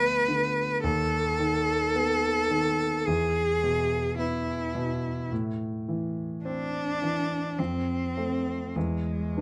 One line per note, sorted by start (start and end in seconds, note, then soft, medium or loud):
0.00 0.80 D2 soft
0.00 0.28 D3 soft
0.00 0.85 F3 soft
0.00 0.62 B3 soft
0.00 0.83 B4 loud
0.28 0.83 D3 soft
0.84 3.02 D#2 medium
0.84 3.08 A4 medium
1.40 2.28 D#3 soft
1.95 2.84 B3 soft
2.50 3.06 D#3 soft
3.07 5.28 E2 soft
3.07 4.18 G#4 medium
3.63 4.53 B2 soft
4.19 5.09 B3 soft
4.19 5.29 E4 medium
4.75 5.31 B2 soft
5.32 7.55 A2 soft
5.88 6.79 E3 soft
6.45 7.36 C4 soft
6.45 7.60 D4 medium
7.02 7.59 E3 soft
7.59 8.72 F2 soft
7.59 8.77 C4 medium
8.17 8.72 A3 soft
8.17 8.72 C4 soft
8.75 9.41 E2 soft
8.75 9.41 G#3 medium
9.36 9.41 B3 soft
9.36 9.41 D4 soft